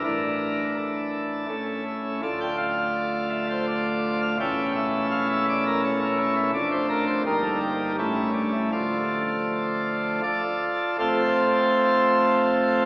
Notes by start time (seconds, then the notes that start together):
0.04 A1 A2 E3 D4 E4 A#4
0.77 A4
1.48 A1 A2 A3 C#4 E4
2.22 D1 D2 A3 D4 F4 A5
2.41 G5
2.57 F5
3.30 E5
3.50 C5
3.67 D5
4.22 F5
4.40 E1 E2 A3 C#4 E4 G5
4.76 E5
5.11 F5
5.30 E5
5.49 D5
5.67 A#4
5.84 C#5
6.03 A#4
6.18 C#5
6.36 E5
6.54 F1 F2 A3 D4 D5
6.72 C5
6.89 A#4
7.07 C5
7.25 G1 G2 G3 A#3 D#4 A#4
7.43 A4
7.60 G4
7.98 A1 A2 G3 A3 C#4 E4
8.34 D4
8.53 E4
8.71 D3 F3 A3 D4 F4
10.23 F4 A4 D5
10.99 F1 F2 F3 A3 C4 F4 A4 C5